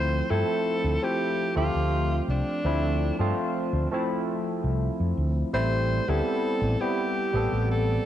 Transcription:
Already playing: D2 F3 A3 C4 E4 C5
0.30 G2 F3 A3 C4 E4 A4
0.84 D2
1.02 F3 A3 C4 E4 G4
1.55 D2 F3 A3 C4 F4 G4
1.75 D2
2.28 C2 D4
2.64 D2 F3 A3 C4 E4
3.19 G2 F3 A3 C4 F4
3.73 D2
3.91 F3 A3 C4 E4
4.64 C2
5.00 F2
5.17 D2
5.53 A1 G3 A3 C4 E4 C5
6.08 D2 G3 B3 C4 E4 A4
6.62 A1
6.80 G3 B3 C4 E4 G4
7.33 A1 G3 B3 C4 A4
7.53 A1
7.71 A4

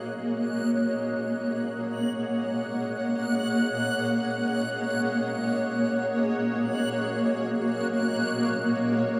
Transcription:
Already playing: A#3 F#4 G#4 C#5 D#5 F#6
0.99 F#5
5.42 A#3
5.69 F#4

